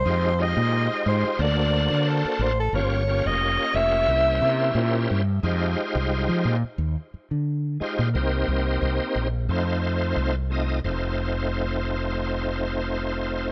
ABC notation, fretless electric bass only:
X:1
M:4/4
L:1/16
Q:"Swing 16ths" 1/4=89
K:Cm
V:1 name="Fretless electric bass" clef=bass
F,,3 B,,2 z A,, z D,,3 D,2 z =A,,,2 | G,,,3 F,,,2 z F,,,2 C,,2 C,2 B,,2 G,,2 | F,,2 z C,,2 F, B,, z E,, z2 D,3 z B,, | C,,2 C,,2 C,, z B,,,2 F,,4 C,,4 |
F,,,16 |]